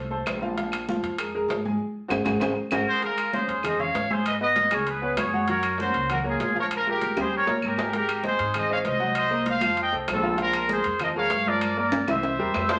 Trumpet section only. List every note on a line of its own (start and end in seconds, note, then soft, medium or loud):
2.72 3.01 F#4 medium
2.72 3.01 A#4 medium
2.88 3.03 G#4 medium
2.88 3.02 C5 loud
3.04 3.32 F4 medium
3.04 3.32 A#4 medium
3.34 3.62 G#4 medium
3.34 3.62 C5 medium
3.65 3.79 C5 medium
3.65 3.79 D#5 medium
3.80 4.10 C#5 medium
3.80 4.11 F5 medium
4.12 4.26 G#4 medium
4.12 4.27 C5 medium
4.26 4.33 B4 medium
4.26 4.34 D#5 medium
4.41 4.69 B4 medium
4.41 4.70 D#5 medium
4.72 4.87 A#4 medium
4.72 4.88 C#5 medium
4.87 5.16 G#4 medium
4.87 5.18 B4 medium
5.17 5.48 G#4 medium
5.17 5.49 C#5 medium
5.49 5.77 A#4 medium
5.49 5.78 C#5 medium
5.80 6.08 F#4 medium
5.80 6.09 C5 loud
6.11 6.18 F#4 medium
6.11 6.19 A#4 medium
6.28 6.55 F4 medium
6.28 6.56 G#4 medium
6.58 6.65 A#4 medium
6.58 6.66 C#5 loud
6.74 6.87 F4 medium
6.74 6.88 A#4 medium
6.88 7.16 G4 medium
6.88 7.17 A#4 medium
7.20 7.34 G#4 medium
7.20 7.34 C5 medium
7.35 7.62 A#4 medium
7.35 7.63 C#5 medium
7.66 7.94 G4 medium
7.66 7.95 A#4 medium
7.95 8.23 G4 medium
7.95 8.24 A#4 medium
8.26 8.54 G#4 medium
8.26 8.54 C5 medium
8.56 8.70 C5 medium
8.56 8.71 D#5 medium
8.71 8.78 C#5 medium
8.71 8.79 F5 medium
8.86 9.14 C5 medium
8.86 9.15 D#5 medium
9.17 9.45 C5 medium
9.17 9.46 D#5 loud
9.49 9.77 C5 medium
9.49 9.77 F5 loud
9.80 9.94 D#5 medium
9.80 9.95 G5 loud
10.10 10.38 F4 medium
10.10 10.39 A4 medium
10.41 10.69 F4 medium
10.41 10.69 A#4 loud
10.71 10.99 G#4 medium
10.71 11.00 C5 medium
11.02 11.09 A#4 medium
11.02 11.09 D#5 medium
11.17 11.45 C#5 medium
11.17 11.46 F5 loud
11.47 11.77 A#4 medium
11.47 11.78 D5 medium
11.78 12.06 A#4 medium
11.78 12.07 D5 medium
12.09 12.70 C5 medium
12.09 12.70 E5 loud
12.71 12.79 G#4 medium
12.71 12.79 C5 loud